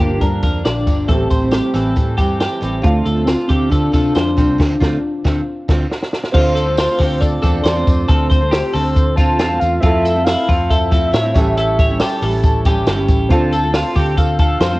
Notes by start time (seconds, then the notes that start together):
Already playing: A#3 F4 G4
0.00 G1 G2 D3 F3 A#3 D4 G4
0.21 G2 D3 F3 A#3 D4 A#4, kick, closed hi-hat, tambourine
0.42 F2 D3 F3 A#3 D4 A#4, kick, closed hi-hat, tambourine
0.65 A#1 D5, snare, closed hi-hat, tambourine
0.86 G1 G2 D3 F3 A#3 D4, kick, closed hi-hat, tambourine
1.08 A1 E3 G3 A3 C4 E4 G4 A4, kick, closed hi-hat, tambourine
1.30 A1 C5, kick, closed hi-hat, tambourine
1.41 G3 C4 E4
1.51 G4, snare, closed hi-hat, tambourine
1.74 A1 A2 E3 G3 C4 E4 A4, snare, closed hi-hat, tambourine
1.95 A2 E3 G3 C4 E4, kick, closed hi-hat, tambourine
2.18 G2 E3 G3 C4 E4 G4, kick, closed hi-hat, tambourine
2.40 G4, snare, closed hi-hat, tambourine
2.61 A1 A2 E3 G3 C4 E4, closed hi-hat, tambourine
2.82 D2 D3 A3 C4 D4 F4, kick, closed hi-hat
2.87 F4
3.06 D2 A3 A4, closed hi-hat, tambourine
3.15 A3 C4 F4
3.25 C4 F4, snare, closed hi-hat, tambourine
3.48 D2 D3 A3 C4 F4 G4, kick, closed hi-hat, tambourine
3.69 D3 A3 C4 D4 F4 A4, kick, closed hi-hat, tambourine
3.92 C3 D3 A3 C4 F4 A4, kick, closed hi-hat, tambourine
4.15 F2 C5, snare, closed hi-hat, tambourine
4.37 C2 D3 A3 C4 F4, kick, closed hi-hat, tambourine
4.58 D2 D3 A3 C4 F4, kick, snare, crash
4.80 D2 A3 C4 F4, kick, snare
5.24 D2 D3 A3 C4 F4, kick, snare
5.68 D2 D3 A3 C4 F4, kick, snare, crash
5.91 snare
6.02 snare
6.13 snare
6.23 snare
6.32 D2 D3 A3 C4 D4 F4 A4 C5, kick, crash, tambourine
6.55 A4, hi-hat pedal, open hi-hat, tambourine
6.66 A3 C4 F4
6.77 F4, snare, hi-hat pedal, open hi-hat, tambourine
6.98 D2 D3 A3 C4 F4 G4, kick, snare, hi-hat pedal, open hi-hat
7.20 A4 D5, kick, hi-hat pedal, open hi-hat, tambourine
7.42 E2 D3 A3 C4 F4 A4, kick, hi-hat pedal, open hi-hat, tambourine
7.64 E2 D3 A3 C4 F4 C5, snare, hi-hat pedal, open hi-hat, tambourine
7.76 A3 C4 F4
7.87 F2, kick, hi-hat pedal, open hi-hat, tambourine
8.08 D2 D3 A3 C4 F4 A4 C5, kick, hi-hat pedal, open hi-hat, tambourine
8.29 C5, kick, hi-hat pedal, open hi-hat, tambourine
8.41 A3 C4 F4
8.51 G4, snare, hi-hat pedal, open hi-hat, tambourine
8.73 D2 D3 A3 C4 F4 A4, hi-hat pedal, open hi-hat
8.96 kick, hi-hat pedal, open hi-hat, tambourine
9.16 D3 A3 C4 F4 A5, kick, hi-hat pedal, open hi-hat, tambourine
9.39 E2 D3 A3 C4 F4, snare, hi-hat pedal, open hi-hat, tambourine
9.50 A3 C4 F4
9.60 E2 F5, hi-hat pedal, open hi-hat, tambourine
9.80 F2 F3 A3 C4 E4 F4 E5, kick, hi-hat pedal, open hi-hat
9.85 A4
10.05 A4, hi-hat pedal, open hi-hat, tambourine
10.15 A3 C4 E4
10.24 E4 F5, snare, hi-hat pedal, open hi-hat, tambourine
10.48 F2 F3 A3 C4 E4 F4, kick, hi-hat pedal, open hi-hat
10.70 A4 E5, kick, hi-hat pedal, open hi-hat, tambourine
10.91 F3 A3 C4 E4 A4, kick, hi-hat pedal, open hi-hat, tambourine
11.12 A2 F3 A3 C4 E4 C#5, snare, hi-hat pedal, open hi-hat, tambourine
11.24 A3 C4 E4
11.34 A1 A2 E3 G3 C#4 E4 G4 A4, kick, hi-hat pedal, open hi-hat, tambourine
11.57 A4 E5, hi-hat pedal, open hi-hat, tambourine
11.79 C#5, kick, hi-hat pedal, open hi-hat, tambourine
11.89 G3 C#4 E4
12.00 G4 A5, snare, hi-hat pedal, open hi-hat, tambourine
12.21 A1 E3 G3 C#4 E4 A4, hi-hat pedal, open hi-hat
12.43 kick, hi-hat pedal, open hi-hat, tambourine
12.65 E3 G3 C#4 E4 G4, kick, hi-hat pedal, open hi-hat, tambourine
12.86 G1 E3 G3 C#4 E4 G4, snare, hi-hat pedal, open hi-hat, tambourine
12.97 G3 C#4 E4
13.08 A1, kick, hi-hat pedal, open hi-hat, tambourine
13.29 D2 D3 A3 C4 D4 F4 A5, kick, hi-hat pedal, open hi-hat, tambourine
13.33 A4
13.52 A4, hi-hat pedal, open hi-hat, tambourine
13.63 A3 C4 F4
13.74 F4, snare, hi-hat pedal, open hi-hat, tambourine
13.96 D2 D3 A3 C4 F4 G4 G5, kick, hi-hat pedal, open hi-hat
14.17 A4 F5, kick, hi-hat pedal, open hi-hat, tambourine
14.39 D3 A3 C4 F4 A4 F5, kick, hi-hat pedal, open hi-hat, tambourine
14.61 F2 D3 A3 C4 F4 C5, snare, hi-hat pedal, open hi-hat, tambourine
14.71 A3 C4 F4